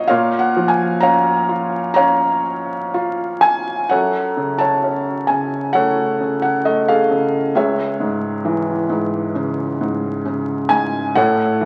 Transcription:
Already playing: A#3 F4 C5 C#5 D#5 F5 F#5
0.08 A#2 A#4 C#5 F5
0.39 F#5
0.56 F3
0.68 G#5
1.00 C#4 C#5 F5 A#5
1.49 F4
1.94 C#4 C#5 F5 A#5
2.94 F4
3.41 G#5
3.89 F#2 A4 C#5 F#5
4.37 C#3
4.59 C#5 A5
4.84 C#4
5.27 C#3 G#5
5.73 A3 A4 C#5 F#5
6.21 C#3
6.42 F#5
6.65 A3 D#5
6.88 G#4 A4 F5
7.11 C#3
7.55 C#2 G#4 C#5 E5
8.00 G#2
8.45 E3
8.89 G#2
9.35 C#3
9.81 G#2
10.25 C#3
10.69 G#2 G#5
11.15 A2 A4 C#5 F#5
11.61 E3

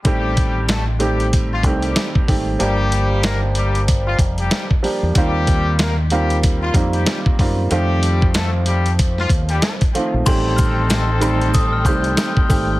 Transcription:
0.05 A1 D#3 G3 A3 C4 G4, kick, closed hi-hat
0.37 kick, closed hi-hat
0.69 A3 A4, snare, closed hi-hat
0.99 D#3 G3 A3 C4 G4, closed hi-hat
1.20 closed hi-hat
1.33 kick, closed hi-hat
1.52 F4
1.63 C2 D#3 G3 A3 C4 G4, kick, closed hi-hat
1.82 G3 G4, closed hi-hat
1.96 snare, closed hi-hat
2.15 kick
2.27 G#1 D#3 G3 A3 C4 G4, kick, open hi-hat
2.59 G1 F3 G3 A#3 D4 G4, closed hi-hat
2.92 closed hi-hat
3.23 A#3 A#4, snare, closed hi-hat
3.55 G3 G4, closed hi-hat
3.75 closed hi-hat
3.88 kick, closed hi-hat
4.07 F4
4.19 F1, kick, closed hi-hat
4.38 G3 G4, closed hi-hat
4.51 snare, closed hi-hat
4.71 kick
4.82 F3 G3 A#3 D4 G4, open hi-hat
5.03 E2
5.15 D#2 D#3 G3 A#3 C4 F4 G4, kick, closed hi-hat
5.47 kick, closed hi-hat
5.79 A#3 A#4, snare, closed hi-hat
6.10 D#3 G3 A#3 C4 F4 G4, closed hi-hat
6.30 closed hi-hat
6.43 kick, closed hi-hat
6.62 F4
6.74 F2 D#3 G3 A#3 C4 F4, kick, closed hi-hat
6.93 G3 G4, closed hi-hat
7.06 snare, closed hi-hat
7.26 kick
7.39 F#2 D#3 G3 A#3 C4 F4, kick, open hi-hat
7.70 F2 D#3 F3 G3 A3 C4 F4 G4, closed hi-hat
8.03 closed hi-hat
8.22 kick
8.34 A3 A4, snare, closed hi-hat
8.65 G3 G4, closed hi-hat
8.86 closed hi-hat
8.99 kick, closed hi-hat
9.18 F4, snare
9.29 D#2, kick, closed hi-hat
9.49 G3 G4, closed hi-hat
9.62 snare, closed hi-hat
9.81 kick, closed hi-hat
9.94 D#3 F3 A3 C4 F4, closed hi-hat
10.14 A#1
10.26 A1 D#3 G3 A3 C4 D#4 G4 A4 C5 G5 C6, kick, closed hi-hat, crash, maracas
10.56 F6, kick, closed hi-hat, maracas
10.90 snare, closed hi-hat, maracas
11.20 D#3 G3 A3 C4 G4, closed hi-hat, high woodblock, maracas
11.41 closed hi-hat
11.54 D#6, kick, closed hi-hat, maracas
11.73 F6
11.85 C2 D#3 G3 A3 C4 G4 G6, kick, closed hi-hat, maracas
12.04 closed hi-hat
12.17 snare, closed hi-hat, maracas
12.37 kick
12.49 G#1 D#3 G3 A3 C4 G4, kick, open hi-hat, maracas

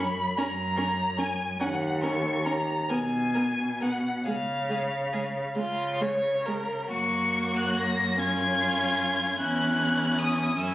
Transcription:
Already playing: F#2
0.00 B5
0.37 F#2 C#4 A#4 A#5
0.76 C#4 A#4
1.17 C#4 A#4 G#5
1.60 D#2 C#4 A#4 F#5
2.02 C#4 A#4 C#6
2.45 C#4 A#4 A#5
2.89 B2 B3 A#4 G#5
3.34 B3 A#4
3.80 B3 A#4 F#5
4.25 C#3 G#3 G#4 F5
4.69 G#3 G#4
5.13 G#3 G#4
5.55 C#3 G#3 F4
6.01 G#3 C#5
6.46 G#3 A#4
6.91 F#2 A#3 F#4 C#6
7.56 F#6
7.77 A#6
8.18 C#4 F4 G#6
9.39 E2 C#4 E4 F#6
10.19 D#6
10.57 F#2 C#4 E4 E6

